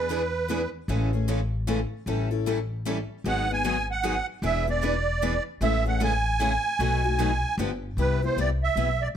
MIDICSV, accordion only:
0, 0, Header, 1, 2, 480
1, 0, Start_track
1, 0, Tempo, 394218
1, 1075, Time_signature, 3, 2, 24, 8
1, 11164, End_track
2, 0, Start_track
2, 0, Title_t, "Accordion"
2, 0, Program_c, 0, 21
2, 0, Note_on_c, 0, 71, 77
2, 847, Note_off_c, 0, 71, 0
2, 3994, Note_on_c, 0, 78, 101
2, 4279, Note_off_c, 0, 78, 0
2, 4296, Note_on_c, 0, 80, 102
2, 4721, Note_off_c, 0, 80, 0
2, 4765, Note_on_c, 0, 78, 98
2, 5194, Note_off_c, 0, 78, 0
2, 5422, Note_on_c, 0, 76, 96
2, 5684, Note_off_c, 0, 76, 0
2, 5719, Note_on_c, 0, 74, 87
2, 6615, Note_off_c, 0, 74, 0
2, 6853, Note_on_c, 0, 76, 102
2, 7119, Note_off_c, 0, 76, 0
2, 7160, Note_on_c, 0, 78, 86
2, 7332, Note_off_c, 0, 78, 0
2, 7348, Note_on_c, 0, 80, 105
2, 9201, Note_off_c, 0, 80, 0
2, 9743, Note_on_c, 0, 71, 88
2, 10005, Note_off_c, 0, 71, 0
2, 10043, Note_on_c, 0, 72, 74
2, 10214, Note_off_c, 0, 72, 0
2, 10226, Note_on_c, 0, 74, 85
2, 10352, Note_off_c, 0, 74, 0
2, 10511, Note_on_c, 0, 76, 103
2, 10980, Note_on_c, 0, 74, 84
2, 10994, Note_off_c, 0, 76, 0
2, 11060, Note_off_c, 0, 74, 0
2, 11164, End_track
0, 0, End_of_file